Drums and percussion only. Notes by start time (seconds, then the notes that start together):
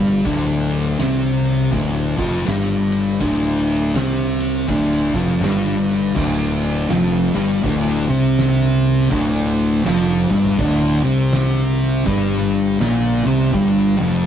0.25 kick, ride
0.71 ride
0.99 snare, ride
1.45 ride
1.72 kick, ride
2.18 kick, ride
2.47 snare, ride
2.92 ride
3.21 kick, ride
3.67 ride
3.95 snare, ride
4.40 ride
4.68 kick, ride
5.14 kick, ride
5.43 snare, ride
5.89 ride
6.16 kick, crash
6.63 snare
6.89 snare, open hi-hat
7.64 kick, open hi-hat
8.38 snare, open hi-hat
8.99 snare
9.11 kick, open hi-hat
9.85 snare, open hi-hat
10.31 kick
10.45 kick
10.59 kick, open hi-hat
11.32 snare, open hi-hat
12.06 kick, open hi-hat
12.53 snare
12.80 snare, open hi-hat
13.53 kick, open hi-hat